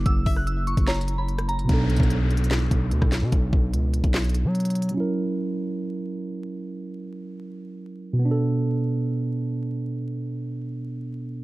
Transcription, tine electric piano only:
\new Staff \with { instrumentName = "Tine electric piano" } { \time 4/4 \key b \minor \tempo 4 = 147 <fis ais cis' e'>1 | <b, b d' a'>1~ | <b, b d' a'>1 | <fis cis' e' ais'>1~ |
<fis cis' e' ais'>1 | <b, b d' a'>1~ | <b, b d' a'>1 | }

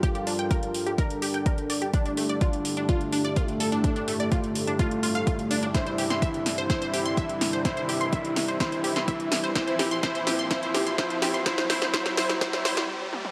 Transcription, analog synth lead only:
\new Staff \with { instrumentName = "Analog synth lead" } { \time 4/4 \key c \mixolydian \tempo 4 = 126 f'2 d'2 | d'2. a4~ | a2 a2 | e'2 e'2 |
e'2 e'2 | e'4 e'4 e'4 e'4 | e'8 e'8 e'8 e'8 e'8 e'8 r4 | }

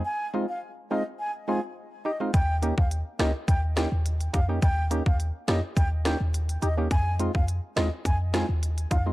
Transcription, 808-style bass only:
\new Staff \with { instrumentName = "808-style bass" } { \clef bass \time 4/4 \key f \minor \tempo 4 = 105 r1 | ees,8. ees,8 r16 des,16 r16 ees,8. ees,8. f,8 | ees,8. ees,8 r16 f,16 r16 ees,8. ees,8. ees,8 | f,8. f,8 r16 ees,16 r16 f,8. ees,8. f,8 | }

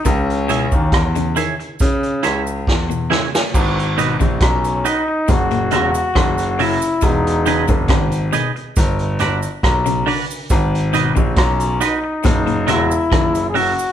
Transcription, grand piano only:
\new Staff \with { instrumentName = "Grand piano" } { \clef bass \time 4/4 \key gis \minor \tempo 4 = 69 cis,8. dis,16 e,8 r8 cis8 cis,8 e,8 r8 | gis,,8. ais,,16 b,,8 r8 fis,,8 e,,16 r16 fis,,8. r16 | e,,8. fis,,16 gis,,8 r8 g,,8 g,,16 r16 b,,8 r8 | gis,,8. ais,,16 b,,8 r8 fis,,8 e,,16 r16 fis,,8. r16 | }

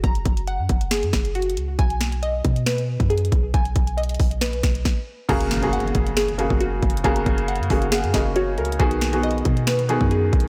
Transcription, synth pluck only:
\new Staff \with { instrumentName = "Synth pluck" } { \time 4/4 \key fis \major \tempo 4 = 137 <fis' gis' fis'' ais''>4 fis''4 gis'4 fis'4 | gis''4 dis''4 b'4 gis'4 | gis''4 dis''4 b'2 | ais''4 fis''4 gis'4 fis'4 |
ais''4 fis''4 gis'4 fis'4 | gis''4 dis''4 b'4 gis'4 | }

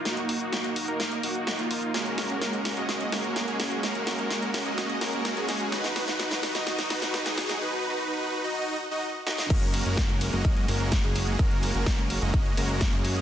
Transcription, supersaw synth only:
\new Staff \with { instrumentName = "Supersaw synth" } { \time 4/4 \key fis \major \tempo 4 = 127 <ais dis' fis'>8. <ais dis' fis'>4 <ais dis' ais'>8. <ais dis' fis'>8. <ais dis' eis'>8. | <gis ais cis' fis' ais'>8. <gis ais cis' fis' ais'>4 <gis ais cis' fis' dis''>8. <gis ais cis' fis' ais'>8. <gis ais cis' fis' gis'>8. | <gis ais cis' fis' ais'>8. <gis ais cis' fis' ais'>4 <gis ais cis' fis' dis''>8. <gis ais cis' fis' ais'>8. <gis ais cis' fis' gis'>8. | <dis' fis' b'>8. <dis' fis' b'>4 <dis' fis' dis''>8. <dis' fis' b'>8. <dis' fis' gis'>8. |
<dis' fis' b'>8. <dis' fis' b'>4 <dis' fis' dis''>8. r16 <dis' fis' dis''>16 r8 <dis' fis' dis''>8 | <gis ais cis' fis' ais'>8. <gis ais cis' fis' ais'>4 <gis ais cis' fis' dis''>8. <gis ais cis' fis' ais'>8. <gis ais cis' fis' gis'>8. | <gis ais cis' fis' ais'>8. <gis ais cis' fis' ais'>4 <gis ais cis' fis' dis''>8. <gis ais cis' fis' ais'>8. <gis ais cis' fis' gis'>8. | }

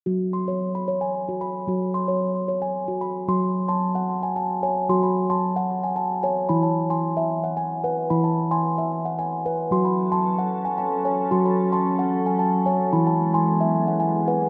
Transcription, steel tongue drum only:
<<
  \new Staff \with { instrumentName = "Steel tongue drum" } { \time 3/4 \key e \major \tempo 4 = 112 << { r8 bis''8. b''8 gis''8. b''8~ | b''16 r16 bis''8. r8 gis''8. b''8 | bis''8. bis''8. r16 gis''16 a''8 gis''8 | bis''16 b''8 bis''8. r16 gis''16 a''8 gis''8 |
b''16 a''8 bis''8. r16 fis''8. fis''8 | b''16 a''8 bis''8. r16 fis''8. fis''8 | bis''16 b''8 bis''8. r16 gis''8. gis''8 | bis''16 b''8 bis''8. r16 gis''16 a''8 gis''8 |
b''16 a''8 bis''8. r16 fis''8. fis''8 | } \\ { fis'8 r16 cis''8 r16 cis''8 r16 fis'8 r16 | fis'8 r16 cis''8 r16 cis''8 r16 fis'8 r16 | fis'8 r16 a''8 fis''8 r8. cis''8 | fis'8 r16 a''8 fis''8 r8. cis''8 |
e'8 r16 gis''8 e''8 r16 gis''8 b'8 | e'8 r16 gis''8 e''8 r16 gis''8 b'8 | fis'8 r16 a''8 fis''8 r16 a''8 cis''8 | fis'8 r16 a''8 fis''8 r8. cis''8 |
e'8 r16 gis''8 e''8 r16 gis''8 b'8 | } >> }
  \new Staff \with { instrumentName = "Steel tongue drum" } { \clef bass \time 3/4 \key e \major fis2. | fis2. | fis2. | fis2. |
e2. | e2. | fis2. | fis2. |
e2. | }
>>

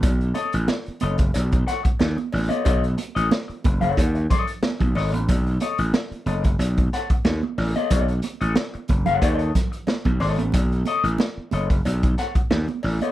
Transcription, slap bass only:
\new Staff \with { instrumentName = "Slap bass" } { \clef bass \time 4/4 \key b \mixolydian \tempo 4 = 91 b,,8 r16 a,,16 r8 fis,,8 b,,8 r8 dis,16 r16 a,,16 r16 | b,,8 r16 a,,16 r8 fis,,8 dis,8 r8. b,,16 gis,,16 a,,16 | b,,8 r16 a,,16 r8 fis,,8 b,,8 r8 dis,16 r16 a,,16 r16 | b,,8 r16 a,,16 r8 fis,,8 dis,8 r8. b,,16 gis,,16 a,,16 |
b,,8 r16 a,,16 r8 fis,,8 b,,8 r8 dis,16 r16 a,,16 r16 | }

